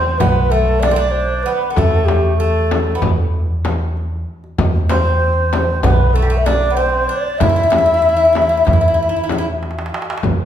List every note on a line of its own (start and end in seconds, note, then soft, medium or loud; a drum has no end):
0.00 0.16 E2 medium
0.00 0.20 C4 medium
0.00 0.20 C5 medium
0.18 1.42 B1 medium
0.18 0.49 B3 medium
0.18 0.52 B4 medium
0.18 frame drum medium
0.18 darbuka dum medium
0.51 0.84 A3 medium
0.51 0.81 A4 medium
0.80 0.90 D4 medium
0.80 1.07 D5 loud
0.80 darbuka tek medium
0.80 frame drum medium
0.91 0.98 C4 medium
0.96 1.47 D4 medium
1.07 1.44 C5 medium
1.07 1.13 D5 medium
1.15 darbuka ka soft
1.43 1.69 B3 medium
1.43 1.74 B4 medium
1.62 darbuka ka soft
1.70 1.77 B3 medium
1.75 2.98 E2 medium
1.75 2.39 A3 medium
1.75 2.07 A4 medium
1.75 frame drum medium
1.75 darbuka dum medium
2.05 2.37 G4 medium
2.05 darbuka tek medium
2.05 frame drum medium
2.37 2.95 A3 medium
2.37 3.05 A4 medium
2.71 darbuka tek medium
2.71 frame drum medium
2.95 3.09 B3 medium
3.02 4.23 E2 medium
3.02 frame drum medium
3.02 darbuka dum medium
3.65 darbuka tek medium
3.65 frame drum medium
3.97 darbuka ka soft
4.44 darbuka ka soft
4.58 5.80 E2 loud
4.58 frame drum medium
4.58 darbuka dum medium
4.89 5.83 C4 medium
4.89 5.85 C5 medium
4.89 darbuka tek medium
4.89 frame drum medium
5.53 darbuka tek medium
5.53 frame drum medium
5.83 7.05 B1 medium
5.83 6.15 B3 medium
5.83 6.16 B4 medium
5.83 frame drum loud
5.83 darbuka dum medium
6.14 6.23 A3 medium
6.14 6.39 A4 medium
6.22 6.30 G3 medium
6.30 6.48 A3 medium
6.38 6.47 E5 medium
6.46 6.72 D4 medium
6.46 6.77 D5 medium
6.46 darbuka tek medium
6.46 frame drum medium
6.70 6.76 B3 medium
6.75 7.10 C4 medium
6.75 7.10 C5 medium
6.75 darbuka ka soft
7.09 7.40 D4 medium
7.09 7.40 D5 medium
7.27 darbuka ka soft
7.39 8.63 E2 medium
7.39 7.48 E4 medium
7.39 9.60 E5 loud
7.39 frame drum medium
7.39 darbuka dum medium
7.49 7.55 E4 medium
7.56 7.62 E4 medium
7.63 7.69 E4 medium
7.70 7.77 E4 medium
7.70 darbuka tek medium
7.70 frame drum medium
7.78 7.85 E4 soft
7.86 7.93 E4 medium
7.94 8.01 E4 medium
8.02 8.08 E4 medium
8.02 darbuka ka soft
8.09 8.15 E4 soft
8.17 8.24 E4 medium
8.25 8.32 E4 soft
8.33 8.39 E4 medium
8.33 darbuka tek medium
8.33 frame drum medium
8.42 8.48 E4 soft
8.49 8.55 E4 medium
8.57 8.63 E4 soft
8.65 9.89 E2 medium
8.65 8.70 E4 medium
8.65 frame drum medium
8.65 darbuka dum medium
8.73 8.78 E4 soft
8.81 8.86 E4 medium
8.88 8.93 E4 soft
8.94 9.00 E4 medium
9.00 9.08 E4 soft
9.00 darbuka ka soft
9.09 9.15 E4 medium
9.16 9.23 E4 soft
9.24 9.30 E4 medium
9.30 9.37 E4 medium
9.30 darbuka tek medium
9.30 frame drum medium
9.38 9.45 E4 medium
9.63 darbuka tek soft
9.71 darbuka ka medium
9.79 darbuka tek medium
9.86 darbuka ka medium
9.94 darbuka tek medium
10.02 darbuka ka medium
10.10 darbuka tek medium
10.18 darbuka ka medium
10.23 10.45 E2 medium
10.23 frame drum medium
10.23 darbuka dum medium